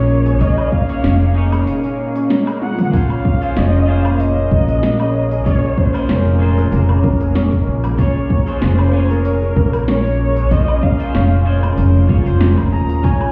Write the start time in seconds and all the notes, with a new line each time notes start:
Already playing: A#1 A#2 G#3 A#3 C#4 D#4 G#4 A#4 C#5 D#5
0.09 A#3
0.26 G#4, open hi-hat, shaker
0.39 A#1 C#4 D#4 G#4 C#5 D#5, kick, open hi-hat, shaker
0.57 G#3, low woodblock, shaker
0.72 A#3 F5, kick
0.88 A#3 C#4 D#4 G#4 C#5, open hi-hat, shaker
1.04 F1 C#4, snare, open hi-hat, shaker
1.21 G#3, shaker
1.34 C#4 D#4 G#4 A#4 C#5
1.52 G#3, open hi-hat, low woodblock, shaker
1.67 A#3, open hi-hat, shaker
1.84 C#4, open hi-hat, shaker
1.99 A#3
2.15 C#4, open hi-hat, shaker
2.30 A#3, snare, open hi-hat, shaker
2.47 G#3, open hi-hat, low woodblock, shaker
2.62 F3 F#5, high tom
2.79 A#3, open hi-hat, mid tom, shaker
2.92 A#1 A#3 C#4 F4 G#4 C5 F5, kick, open hi-hat, shaker
3.10 C#4, low woodblock, shaker
3.25 A#3, kick
3.41 C#4 F4 G#4 C5, open hi-hat, shaker
3.57 F1 C#4 D#5, snare, open hi-hat, shaker
3.74 G#3, shaker
3.86 A#3 C#4 F4 G#4 F5
3.90 C5
4.05 A#3, low woodblock, shaker
4.16 A#4
4.20 C#4 D#5, open hi-hat, shaker
4.37 G#3, shaker
4.51 A#1 A#4, kick
4.68 G#3, open hi-hat, shaker
4.83 A#3, snare, open hi-hat, shaker
5.00 C#4, open hi-hat, low woodblock, shaker
5.15 A#3
5.31 G#4, open hi-hat, shaker
5.45 A#1 C#4 F4 G#4 C#5, kick, open hi-hat, shaker
5.63 G#3, shaker
5.78 A#3 C5, kick
5.93 A#3 C#4 F4 G#4 C5, open hi-hat, low woodblock, shaker
6.03 C5
6.09 F1 C#4 A#4, snare, open hi-hat, shaker
6.26 G#3, shaker
6.39 C#4 F4 G#4 A#4 C5
6.58 G#3, shaker
6.72 F1 A#3, open hi-hat, shaker
6.89 C#4, low woodblock, shaker
7.04 A#3, kick
7.21 G#4, open hi-hat, shaker
7.35 C#4, snare, open hi-hat, shaker
7.52 G#3, kick, open hi-hat, shaker
7.67 A#1 A#3
7.84 A#3, open hi-hat, low woodblock, shaker
7.98 A#1 C#4 F4 G#4 C#5, kick, open hi-hat, shaker
8.16 G#3, shaker
8.30 A#4, kick
8.46 G#3 C#4 F4 G#4 C5, open hi-hat, shaker
8.62 F1 A#3 C5, snare, open hi-hat, shaker
8.79 C#4, low woodblock, shaker
8.91 A#3 C#4 F4 G#4
8.95 C#5
9.10 G#4 A#4, shaker
9.25 C#4, open hi-hat, shaker
9.42 G#3, shaker
9.56 A#1 A#3, kick
9.73 A#3, open hi-hat, low woodblock, shaker
9.88 C#4 C#5, snare, open hi-hat, shaker
10.05 G#3, open hi-hat, shaker
10.20 A#4
10.36 G#3, open hi-hat, shaker
10.50 A#1 A#3 C#4 F4 G#4 C5 D#5, kick, open hi-hat, shaker
10.68 C#4, low woodblock, shaker
10.83 A#3 F5, kick
10.99 C#4 F4 G#4 C5, open hi-hat, shaker
11.14 F1 C#4, snare, open hi-hat, shaker
11.31 G#3, shaker
11.45 A#3 C#4 F4 G#4 C5
11.63 A#3, low woodblock, shaker
11.78 F1 C#4, open hi-hat, shaker
11.95 G#3, open hi-hat, shaker
12.08 C#4 F4 G#4 C#5, kick
12.24 F1 C#4 F4 G#4 C5, open hi-hat, shaker
12.41 A#3, snare, open hi-hat, shaker
12.58 A#4, kick, open hi-hat, low woodblock, shaker
12.72 D#2 G#4 A#5
12.89 F4, open hi-hat, shaker
13.03 A#1 C#4 D#4 G#4 C#5 G#5, kick, open hi-hat, shaker
13.21 G#3, low woodblock, shaker